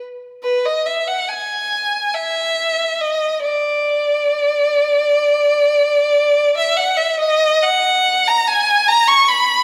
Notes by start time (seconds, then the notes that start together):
0.43 B4
0.65 D#5
0.86 E5
1.07 F#5
1.28 G#5
2.14 E5
3.01 D#5
3.43 D5
6.57 E5
6.76 F#5
6.97 E5
7.19 D#5
7.62 F#5
8.27 A#5
8.47 G#5
8.88 A#5
9.07 C#6
9.28 B5